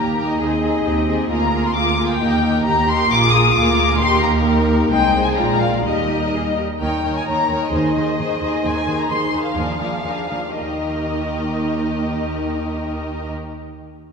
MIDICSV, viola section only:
0, 0, Header, 1, 2, 480
1, 0, Start_track
1, 0, Key_signature, -3, "major"
1, 0, Tempo, 452148
1, 426, Time_signature, 2, 2, 24, 8
1, 5216, Tempo, 475059
1, 7136, Tempo, 457317
1, 10016, Tempo, 499168
1, 14407, End_track
2, 0, Start_track
2, 0, Title_t, "Viola section"
2, 0, Program_c, 0, 48
2, 0, Note_on_c, 0, 58, 35
2, 0, Note_on_c, 0, 63, 32
2, 177, Note_off_c, 0, 58, 0
2, 179, Note_off_c, 0, 63, 0
2, 190, Note_on_c, 0, 58, 32
2, 192, Note_on_c, 0, 63, 34
2, 426, Note_off_c, 0, 58, 0
2, 427, Note_off_c, 0, 63, 0
2, 447, Note_on_c, 0, 60, 39
2, 448, Note_on_c, 0, 63, 44
2, 669, Note_off_c, 0, 60, 0
2, 670, Note_off_c, 0, 63, 0
2, 682, Note_on_c, 0, 60, 35
2, 683, Note_on_c, 0, 63, 33
2, 897, Note_off_c, 0, 63, 0
2, 901, Note_off_c, 0, 60, 0
2, 910, Note_on_c, 0, 63, 39
2, 914, Note_on_c, 0, 60, 35
2, 1134, Note_off_c, 0, 60, 0
2, 1134, Note_off_c, 0, 63, 0
2, 1147, Note_on_c, 0, 60, 37
2, 1147, Note_on_c, 0, 63, 34
2, 1387, Note_off_c, 0, 60, 0
2, 1387, Note_off_c, 0, 63, 0
2, 1393, Note_on_c, 0, 58, 44
2, 1397, Note_on_c, 0, 65, 44
2, 1629, Note_off_c, 0, 58, 0
2, 1631, Note_off_c, 0, 65, 0
2, 1647, Note_on_c, 0, 58, 38
2, 1650, Note_on_c, 0, 65, 41
2, 1871, Note_off_c, 0, 58, 0
2, 1875, Note_off_c, 0, 65, 0
2, 1883, Note_on_c, 0, 58, 42
2, 1888, Note_on_c, 0, 65, 43
2, 2103, Note_off_c, 0, 58, 0
2, 2106, Note_off_c, 0, 65, 0
2, 2116, Note_on_c, 0, 58, 41
2, 2119, Note_on_c, 0, 65, 40
2, 2331, Note_off_c, 0, 58, 0
2, 2341, Note_on_c, 0, 63, 51
2, 2344, Note_on_c, 0, 58, 49
2, 2348, Note_off_c, 0, 65, 0
2, 2572, Note_off_c, 0, 63, 0
2, 2576, Note_off_c, 0, 58, 0
2, 2585, Note_on_c, 0, 63, 47
2, 2588, Note_on_c, 0, 58, 44
2, 2808, Note_off_c, 0, 63, 0
2, 2811, Note_off_c, 0, 58, 0
2, 2821, Note_on_c, 0, 63, 45
2, 2824, Note_on_c, 0, 58, 43
2, 3045, Note_off_c, 0, 63, 0
2, 3047, Note_off_c, 0, 58, 0
2, 3058, Note_on_c, 0, 63, 46
2, 3060, Note_on_c, 0, 58, 43
2, 3285, Note_off_c, 0, 58, 0
2, 3297, Note_off_c, 0, 63, 0
2, 3298, Note_on_c, 0, 58, 59
2, 3298, Note_on_c, 0, 65, 59
2, 3747, Note_off_c, 0, 58, 0
2, 3748, Note_off_c, 0, 65, 0
2, 3771, Note_on_c, 0, 65, 52
2, 3777, Note_on_c, 0, 58, 51
2, 4230, Note_off_c, 0, 58, 0
2, 4242, Note_on_c, 0, 58, 61
2, 4242, Note_on_c, 0, 63, 55
2, 4246, Note_off_c, 0, 65, 0
2, 5187, Note_off_c, 0, 63, 0
2, 5188, Note_off_c, 0, 58, 0
2, 5202, Note_on_c, 0, 56, 54
2, 5207, Note_on_c, 0, 63, 52
2, 5647, Note_off_c, 0, 56, 0
2, 5649, Note_off_c, 0, 63, 0
2, 5678, Note_on_c, 0, 56, 43
2, 5678, Note_on_c, 0, 65, 44
2, 6146, Note_on_c, 0, 63, 40
2, 6147, Note_on_c, 0, 55, 43
2, 6151, Note_off_c, 0, 56, 0
2, 6160, Note_off_c, 0, 65, 0
2, 6903, Note_off_c, 0, 55, 0
2, 6903, Note_off_c, 0, 63, 0
2, 7129, Note_on_c, 0, 51, 45
2, 7135, Note_on_c, 0, 63, 45
2, 7371, Note_off_c, 0, 63, 0
2, 7372, Note_off_c, 0, 51, 0
2, 7383, Note_on_c, 0, 63, 37
2, 7385, Note_on_c, 0, 51, 36
2, 7605, Note_off_c, 0, 63, 0
2, 7608, Note_off_c, 0, 51, 0
2, 7617, Note_on_c, 0, 63, 40
2, 7620, Note_on_c, 0, 51, 42
2, 7857, Note_off_c, 0, 63, 0
2, 7859, Note_off_c, 0, 51, 0
2, 7869, Note_on_c, 0, 63, 39
2, 7870, Note_on_c, 0, 51, 36
2, 8099, Note_off_c, 0, 51, 0
2, 8105, Note_off_c, 0, 63, 0
2, 8112, Note_on_c, 0, 51, 49
2, 8116, Note_on_c, 0, 63, 50
2, 8342, Note_off_c, 0, 51, 0
2, 8343, Note_off_c, 0, 63, 0
2, 8354, Note_on_c, 0, 51, 42
2, 8356, Note_on_c, 0, 63, 38
2, 8576, Note_off_c, 0, 51, 0
2, 8584, Note_off_c, 0, 63, 0
2, 8589, Note_on_c, 0, 51, 40
2, 8597, Note_on_c, 0, 63, 42
2, 8810, Note_off_c, 0, 63, 0
2, 8812, Note_off_c, 0, 51, 0
2, 8823, Note_on_c, 0, 63, 39
2, 8824, Note_on_c, 0, 51, 37
2, 9040, Note_off_c, 0, 51, 0
2, 9046, Note_off_c, 0, 63, 0
2, 9053, Note_on_c, 0, 51, 45
2, 9058, Note_on_c, 0, 63, 49
2, 9284, Note_off_c, 0, 51, 0
2, 9287, Note_off_c, 0, 63, 0
2, 9297, Note_on_c, 0, 51, 42
2, 9298, Note_on_c, 0, 63, 38
2, 9528, Note_off_c, 0, 51, 0
2, 9529, Note_off_c, 0, 63, 0
2, 9539, Note_on_c, 0, 51, 40
2, 9540, Note_on_c, 0, 63, 38
2, 9759, Note_off_c, 0, 51, 0
2, 9760, Note_off_c, 0, 63, 0
2, 9771, Note_on_c, 0, 51, 33
2, 9773, Note_on_c, 0, 63, 36
2, 10011, Note_off_c, 0, 51, 0
2, 10012, Note_off_c, 0, 63, 0
2, 10019, Note_on_c, 0, 62, 43
2, 10023, Note_on_c, 0, 53, 40
2, 10243, Note_off_c, 0, 62, 0
2, 10244, Note_off_c, 0, 53, 0
2, 10256, Note_on_c, 0, 53, 31
2, 10256, Note_on_c, 0, 62, 33
2, 10483, Note_off_c, 0, 53, 0
2, 10483, Note_off_c, 0, 62, 0
2, 10494, Note_on_c, 0, 53, 28
2, 10495, Note_on_c, 0, 62, 31
2, 10730, Note_off_c, 0, 53, 0
2, 10731, Note_off_c, 0, 62, 0
2, 10745, Note_on_c, 0, 62, 27
2, 10748, Note_on_c, 0, 53, 27
2, 10979, Note_off_c, 0, 62, 0
2, 10981, Note_off_c, 0, 53, 0
2, 10995, Note_on_c, 0, 51, 33
2, 11000, Note_on_c, 0, 63, 35
2, 13629, Note_off_c, 0, 51, 0
2, 13631, Note_off_c, 0, 63, 0
2, 14407, End_track
0, 0, End_of_file